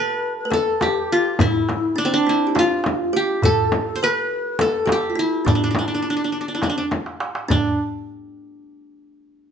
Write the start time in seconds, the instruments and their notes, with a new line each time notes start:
Already playing: qanun G4 A4 B4, ney B4, kalimba B4
0.37 ney B4
0.45 kalimba B4
0.51 kalimba A4, ney A4, qanun A4, darbuka tek, frame drum
0.80 ney G4, qanun G4, darbuka tek, frame drum
1.12 qanun F4
1.39 ney E4, kalimba E4, qanun E4, darbuka dum, frame drum
1.69 darbuka tek, frame drum
1.96 kalimba D4, ney D4, qanun D4
2.05 qanun C4
2.14 qanun D4
2.27 kalimba E4, qanun E4
2.47 kalimba G4
2.55 kalimba F4, ney F4, qanun F4, darbuka tek, frame drum
2.84 darbuka tek, frame drum
3.00 ney F4
3.13 kalimba G4, ney G4, qanun G4
3.42 ney A4, kalimba A4, qanun A4, darbuka dum, frame drum
3.72 darbuka tek, frame drum
3.86 ney A4
3.96 qanun C5
4.00 ney A#4, kalimba B4, qanun B4
4.15 ney B4
4.59 kalimba A4, ney A4, qanun A4, darbuka tek, frame drum
4.86 kalimba G4, darbuka tek, frame drum
4.92 qanun G4
5.10 kalimba F4
5.16 kalimba E4, qanun E4
5.45 kalimba D4, qanun D4, ney D4, darbuka dum, frame drum
5.55 qanun D4
5.64 qanun D4
5.71 qanun D4
5.75 qanun D4, darbuka tek, frame drum
5.88 qanun D4
5.94 qanun D4
6.02 qanun D4, darbuka ka
6.10 qanun D4
6.17 qanun D4
6.24 qanun D4
6.32 qanun D4, darbuka ka
6.41 qanun D4
6.48 qanun D4
6.55 qanun D4, ney E4
6.62 qanun D4, darbuka tek, frame drum
6.67 ney D4, qanun D4
6.75 ney C4, qanun D4
6.84 ney D4
6.91 darbuka tek, frame drum
7.06 darbuka ka
7.20 darbuka tek
7.35 darbuka ka
7.48 kalimba D4, qanun D4, ney D4, frame drum, darbuka dum